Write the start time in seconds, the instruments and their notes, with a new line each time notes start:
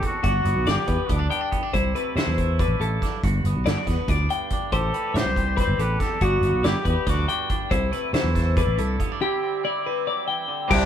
Already playing: clean electric guitar E2 E3 G3 G4 A4
0.02 clean electric guitar C4, trumpet F#4, kick, closed hi-hat
0.22 fretless electric bass G1, clean electric guitar G2 D4 F#4, kick, closed hi-hat
0.27 trumpet F#4
0.45 fretless electric bass G1, clean electric guitar B3, closed hi-hat
0.55 fretless electric bass B1
0.66 fretless electric bass G1, clean electric guitar D3 D4 D5, trumpet G4, snare, closed hi-hat
0.87 fretless electric bass E2, clean electric guitar B3 B4, kick, closed hi-hat
1.08 fretless electric bass D2, clean electric guitar B3 D5, trumpet D4, kick, closed hi-hat
1.19 clean electric guitar D4
1.29 clean electric guitar G2 B3 G5, closed hi-hat
1.41 clean electric guitar D4
1.51 clean electric guitar B3, kick, closed hi-hat
1.63 clean electric guitar D4
1.73 fretless electric bass C2, clean electric guitar C3 E4 C5, kick, closed hi-hat
1.95 clean electric guitar A3 B4, closed hi-hat
2.16 fretless electric bass C3, clean electric guitar E3 E4 C5, snare, closed hi-hat
2.27 fretless electric bass E2
2.38 clean electric guitar A3, kick, closed hi-hat
2.59 clean electric guitar D4 B4, kick, closed hi-hat
2.68 fretless electric bass A1
2.80 fretless electric bass A1, clean electric guitar G2 E4 A4, closed hi-hat
3.02 clean electric guitar D4, kick, snare, closed hi-hat
3.24 fretless electric bass G1, clean electric guitar G2 F#4, kick, closed hi-hat
3.44 fretless electric bass G1, clean electric guitar B3, closed hi-hat
3.55 fretless electric bass B1
3.65 fretless electric bass G1, clean electric guitar D3 E4 D5, snare, closed hi-hat
3.77 clean electric guitar F#4
3.87 fretless electric bass E2, clean electric guitar B3 B4, kick, snare, closed hi-hat
4.08 fretless electric bass D2, clean electric guitar D4 D5, kick, closed hi-hat
4.30 clean electric guitar G2 G5, closed hi-hat
4.50 clean electric guitar D4, kick, closed hi-hat
4.72 fretless electric bass A1, clean electric guitar A2 G4 C5, trumpet A4, kick, closed hi-hat
4.94 clean electric guitar G3 B4, closed hi-hat
5.14 fretless electric bass A2, clean electric guitar E3 G4 C5, trumpet C5, snare, closed hi-hat
5.25 fretless electric bass C2
5.36 clean electric guitar G3, kick, closed hi-hat
5.57 clean electric guitar C4 B4, trumpet C5, kick, closed hi-hat
5.68 fretless electric bass G1
5.78 fretless electric bass A1, clean electric guitar E2 G4 A4, trumpet B4, closed hi-hat
6.00 clean electric guitar C4, trumpet A4, kick, snare, closed hi-hat
6.21 fretless electric bass G1, clean electric guitar G2 D3 B3 D4 F#4, trumpet F#4, kick, closed hi-hat
6.41 fretless electric bass G1, clean electric guitar B3, closed hi-hat
6.53 fretless electric bass B1
6.63 fretless electric bass G1, clean electric guitar D3 E4 D5, trumpet G4, snare, closed hi-hat
6.85 fretless electric bass E2, clean electric guitar B3 B4, trumpet G4, kick, closed hi-hat
7.07 fretless electric bass D2, clean electric guitar D4 D5, trumpet F#4, kick, snare, closed hi-hat
7.28 clean electric guitar G2 D4 G5, closed hi-hat
7.50 clean electric guitar D4, kick, closed hi-hat
7.70 fretless electric bass C2, clean electric guitar C3 E4 C5, kick, closed hi-hat
7.92 clean electric guitar A3 B4, closed hi-hat
8.13 fretless electric bass C3, clean electric guitar E3 E4 C5, snare, closed hi-hat
8.23 fretless electric bass E2
8.35 clean electric guitar A3, kick, snare, closed hi-hat
8.56 clean electric guitar D4 B4, kick, closed hi-hat
8.67 fretless electric bass A1
8.77 fretless electric bass C2, clean electric guitar G2 E4 A4, closed hi-hat
8.99 clean electric guitar B3, kick, closed hi-hat
9.12 clean electric guitar D4
9.21 clean electric guitar D3 G3 C4 E4 G4
9.43 clean electric guitar C4
9.64 clean electric guitar G3 E4 D5
9.86 clean electric guitar C4 B4
10.07 clean electric guitar F#3 D5
10.28 clean electric guitar E3 G5
10.48 clean electric guitar D3
10.69 fretless electric bass C2, overdriven electric guitar C3 G3 C4 E4, trumpet D4, clean electric guitar G4, kick, crash